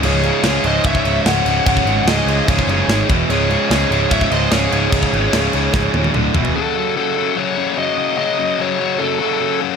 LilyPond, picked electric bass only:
\new Staff \with { instrumentName = "Picked electric bass" } { \clef bass \time 4/4 \key cis \minor \tempo 4 = 147 cis,,4 cis,8 cis,,8 cis,,8 cis,,8 cis,,8 cis,,8 | cis,,8 gis,,8 cis,,8 cis,8 cis,,8 fis,,8 gis,,8 e,,8 | cis,,4 cis,8 cis,,8 cis,,8 cis,,8 cis,,8 cis,,8 | cis,,8 gis,,8 cis,,8 cis,8 cis,,8 dis,,8 d,,8 e,,8 |
r1 | r1 | }